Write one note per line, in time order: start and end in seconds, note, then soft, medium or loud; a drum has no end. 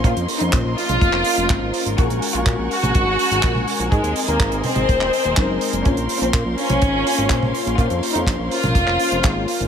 0.00 1.94 C#4 medium
0.00 9.68 A#4 medium
0.00 1.94 C6 medium
0.04 0.15 A#2 loud
0.04 0.38 A#3 loud
0.04 0.38 C#4 medium
0.04 0.32 F4 loud
0.04 0.38 F4 medium
0.04 0.38 C5 loud
0.04 1.96 D#5 medium
0.04 kick loud
0.04 closed hi-hat medium
0.17 0.27 F2 medium
0.17 closed hi-hat medium
0.28 open hi-hat loud
0.40 0.51 F2 medium
0.40 1.23 A#3 medium
0.40 1.23 C#4 medium
0.40 0.68 D#4 medium
0.40 1.23 F4 medium
0.40 1.23 C5 medium
0.40 closed hi-hat medium
0.53 0.63 A#1 loud
0.53 kick loud
0.53 clap loud
0.53 closed hi-hat loud
0.65 0.75 A#1 medium
0.77 1.88 F4 loud
0.77 open hi-hat medium
0.89 1.00 A#1 medium
0.89 closed hi-hat medium
0.89 high tom medium
1.01 1.12 F1 loud
1.01 kick loud
1.01 closed hi-hat medium
1.13 1.24 F1 medium
1.13 clap soft
1.24 1.95 A#3 medium
1.24 1.95 C#4 medium
1.24 1.95 F4 medium
1.24 1.95 C5 loud
1.24 open hi-hat loud
1.37 1.48 F1 medium
1.37 closed hi-hat medium
1.49 1.60 G#1 loud
1.49 kick loud
1.49 clap loud
1.49 closed hi-hat medium
1.62 1.72 G#1 medium
1.74 open hi-hat loud
1.86 1.96 G#1 medium
1.86 closed hi-hat medium
1.98 2.09 A#1 medium
1.98 2.32 G#3 loud
1.98 2.32 C#4 medium
1.98 2.32 F#4 medium
1.98 2.25 F#4 loud
1.98 2.32 A#4 loud
1.98 3.90 F#5 medium
1.98 5.81 G#5 medium
1.98 3.90 C#6 medium
1.98 kick loud
1.98 closed hi-hat medium
2.10 2.21 A#1 medium
2.10 closed hi-hat medium
2.22 open hi-hat loud
2.34 2.45 A#1 medium
2.34 3.16 G#3 medium
2.34 3.16 C#4 medium
2.34 2.62 F4 medium
2.34 3.16 F#4 medium
2.34 3.16 A#4 loud
2.34 closed hi-hat medium
2.46 2.57 A#2 loud
2.46 kick loud
2.46 clap loud
2.46 closed hi-hat medium
2.59 2.69 A#1 medium
2.71 3.82 F#4 loud
2.71 open hi-hat loud
2.83 2.93 A#1 medium
2.83 closed hi-hat medium
2.83 high tom medium
2.95 3.05 G#1 loud
2.95 kick loud
2.95 closed hi-hat medium
3.07 3.17 G#1 medium
3.19 3.89 G#3 medium
3.19 3.89 C#4 medium
3.19 3.89 F#4 medium
3.19 3.89 A#4 loud
3.19 open hi-hat loud
3.31 3.42 G#1 medium
3.31 closed hi-hat medium
3.43 3.54 A#1 loud
3.43 kick loud
3.43 clap loud
3.43 closed hi-hat medium
3.55 3.66 A#1 medium
3.55 high tom medium
3.68 open hi-hat loud
3.80 3.90 A#1 medium
3.80 closed hi-hat medium
3.92 4.02 G#2 medium
3.92 4.19 G#3 medium
3.92 4.25 G#3 loud
3.92 4.25 C4 medium
3.92 4.25 D#4 medium
3.92 4.19 G#4 loud
3.92 4.25 A#4 loud
3.92 5.83 D#5 medium
3.92 9.68 C6 medium
3.92 kick loud
3.92 closed hi-hat medium
4.04 4.14 D#2 medium
4.04 closed hi-hat medium
4.16 open hi-hat loud
4.28 4.38 D#2 medium
4.28 5.10 G#3 medium
4.28 4.55 A#3 medium
4.28 5.10 C4 medium
4.28 5.10 D#4 medium
4.28 4.55 A#4 medium
4.28 5.10 A#4 medium
4.28 closed hi-hat medium
4.40 4.50 G#1 loud
4.40 kick loud
4.40 clap loud
4.40 closed hi-hat medium
4.52 4.62 G#1 medium
4.52 closed hi-hat medium
4.64 5.76 C4 medium
4.64 5.76 C5 loud
4.64 open hi-hat loud
4.64 high tom medium
4.76 4.87 G#1 medium
4.76 closed hi-hat medium
4.76 high tom medium
4.89 4.99 D#1 loud
4.89 kick loud
4.89 closed hi-hat medium
5.01 5.11 D#1 medium
5.01 clap soft
5.13 open hi-hat loud
5.24 5.35 D#1 medium
5.24 closed hi-hat medium
5.37 5.47 F#1 loud
5.37 5.82 G#3 loud
5.37 5.82 C4 medium
5.37 5.82 D#4 medium
5.37 5.82 A#4 loud
5.37 kick loud
5.37 clap loud
5.37 closed hi-hat medium
5.49 5.59 F#1 medium
5.61 open hi-hat loud
5.73 5.83 F#1 medium
5.73 closed hi-hat medium
5.85 5.96 A#1 loud
5.85 6.19 A#3 loud
5.85 6.19 C#4 medium
5.85 9.68 C#4 medium
5.85 6.12 C#4 loud
5.85 6.19 F4 medium
5.85 6.19 C5 loud
5.85 9.68 F5 medium
5.85 kick loud
5.85 closed hi-hat medium
5.97 6.08 A#1 medium
5.97 closed hi-hat medium
6.09 open hi-hat loud
6.21 6.32 A#1 medium
6.21 7.03 A#3 medium
6.21 6.49 C4 medium
6.21 7.03 C#4 medium
6.21 7.03 F4 medium
6.21 7.03 C5 loud
6.21 closed hi-hat medium
6.34 6.44 A#2 loud
6.34 kick loud
6.34 clap loud
6.34 closed hi-hat medium
6.46 6.56 A#1 medium
6.58 7.69 C#4 loud
6.58 open hi-hat loud
6.69 6.80 A#1 medium
6.69 closed hi-hat medium
6.69 high tom medium
6.82 6.92 G#1 loud
6.82 kick loud
6.82 closed hi-hat medium
6.94 7.04 G#1 medium
7.06 7.76 A#3 medium
7.06 7.76 C#4 medium
7.06 7.76 F4 medium
7.06 7.76 C5 loud
7.06 open hi-hat loud
7.18 7.29 G#1 medium
7.18 closed hi-hat medium
7.30 7.40 A#1 loud
7.30 kick loud
7.30 clap loud
7.30 closed hi-hat medium
7.42 7.53 A#1 medium
7.42 high tom medium
7.55 open hi-hat medium
7.67 7.77 A#1 medium
7.67 closed hi-hat medium
7.78 7.89 A#2 loud
7.78 8.12 A#3 loud
7.78 8.12 C#4 medium
7.78 8.06 F4 loud
7.78 8.12 F4 medium
7.78 8.12 C5 loud
7.78 kick loud
7.78 closed hi-hat medium
7.90 8.01 F2 medium
7.90 closed hi-hat medium
8.03 open hi-hat loud
8.15 8.25 F2 medium
8.15 8.97 A#3 medium
8.15 8.97 C#4 medium
8.15 8.42 D#4 medium
8.15 8.97 F4 medium
8.15 8.97 C5 medium
8.15 closed hi-hat medium
8.27 8.37 A#1 loud
8.27 kick loud
8.27 clap loud
8.27 closed hi-hat loud
8.39 8.50 A#1 medium
8.51 9.63 F4 loud
8.51 open hi-hat medium
8.63 8.74 A#1 medium
8.63 closed hi-hat medium
8.63 high tom medium
8.75 8.86 F1 loud
8.75 kick loud
8.75 closed hi-hat medium
8.87 8.98 F1 medium
8.87 clap soft
8.99 9.68 A#3 medium
8.99 9.68 C#4 medium
8.99 9.68 F4 medium
8.99 9.68 C5 loud
8.99 open hi-hat loud
9.12 9.22 F1 medium
9.12 closed hi-hat medium
9.23 9.34 G#1 loud
9.23 kick loud
9.23 clap loud
9.23 closed hi-hat medium
9.36 9.46 G#1 medium
9.48 open hi-hat loud
9.60 9.68 G#1 medium
9.60 closed hi-hat medium